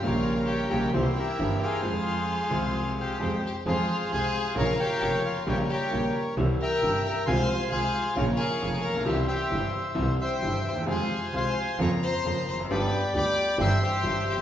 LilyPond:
<<
  \new Staff \with { instrumentName = "Bandoneon" } { \time 4/4 \key f \minor \tempo 4 = 133 << { f''4 g''8 g''8 c''8 e''4 f''8~ | f''2~ f''8 g''4 g''8 | f''4 aes''4 bes''8 g''4 f''8 | g''8 g''4 r4 bes''4 bes''8 |
c'''4 aes''4 f''8 aes''4 bes''8 | g''8 g''4 r4 c'''4 c'''8 | aes''4 c'''4 des'''8 c'''4 c'''8 | b''4 d'''4 e'''8 g''4 g''8 | } \\ { <bes' des''>2 <e' g'>8 <g' bes'>4 <aes' c''>8~ | <aes' c''>2~ <aes' c''>8 c''4. | <aes' c''>4 <c'' f''>4 <des'' f''>8 <bes' des''>4. | <bes' des''>8 <bes' des''>4. r8 <e'' g''>4. |
<f'' aes''>4 <c'' f''>4 <bes' des''>8 <des'' f''>4. | <c'' e''>8 <c'' e''>2 <e'' g''>4. | <c'' f''>4 <f'' aes''>4 bes''2 | <d'' g''>4 <g'' b''>4 <g'' c'''>8 <c'' e''>4. | } >> }
  \new Staff \with { instrumentName = "Violin" } { \time 4/4 \key f \minor f'4 g'8 g'8 c'8 e'4 f'8~ | f'2~ f'8 g'4 g'8 | f'4 aes'4 bes'8 g'4 f'8 | g'8 g'4 r4 bes'4 bes'8 |
c''4 aes'4 f'8 aes'4 bes'8 | g'8 g'4 r4 c''4 c''8 | aes'4 c''4 des''8 c''4 c''8 | b'4 d''4 e''8 g'4 g'8 | }
  \new Staff \with { instrumentName = "Upright piano" } { \clef bass \time 4/4 \key f \minor <bes,, bes, des g bes g'>4. <bes,, bes, des g bes g'>8 <c, c e bes c' g'>8 r8 <g,, g, e bes c' g'>8 r8 | <f, f aes c' aes'>4. <c, c f aes c' aes'>4. <f, f aes c' aes'>8 r8 | <f, f aes c' aes'>8 r8 <c, c f aes c' aes'>8 r8 <bes,, bes, des f bes f'>8 r8 <f,, f, des f bes f'>8 r8 | <bes,, bes, des g bes g'>8 r8 <bes,, bes, des g bes g'>8 r8 <c, c e g e'>8 r8 <g,, g, c e g e'>8 r8 |
<c, c f aes f'>8 r8 <c, c f aes f'>8 r8 <bes,, bes, des f bes f'>8 r8 <f,, f, des f bes f'>8 r32 a,,32 bes,,32 b,,32 | <c, c e g e'>8 r8 <g,, g, c e g e'>8 r8 <c, c e g e'>8 r8 <g,, g, c e g e'>8 r32 d,32 ees,32 e,32 | <f, c f aes f'>8 r8 <c, c f aes f'>8 r8 <f, des f bes c' f'>8 r8 <f, des f bes c' f'>8 r32 e,32 f,32 ges,32 | <g,, g, d g b g'>8 r8 <d, d g b g'>8 r8 <g,, g, e g c' g'>8 r8 <g,, g, e g c' g'>8 r32 f,,32 ges,,32 r32 | }
  \new Staff \with { instrumentName = "Double bass" } { \clef bass \time 4/4 \key f \minor bes,,4. bes,,8 c,8 r8 g,,8 r8 | f,4. c,4. f,8 r8 | f,8 r8 c,8 r8 bes,,8 r8 f,,8 r8 | bes,,8 r8 bes,,8 r8 c,8 r8 g,,8 r8 |
c,8 r8 c,8 r8 bes,,8 r8 f,,8 bes,,8 | c,8 r8 g,,8 r8 c,8 r8 g,,8 ees,8 | f,8 r8 c,8 r8 f,8 r8 f,8 f,,8 | g,,8 r8 d,8 r8 g,,8 r8 g,,8 ges,,8 | }
>>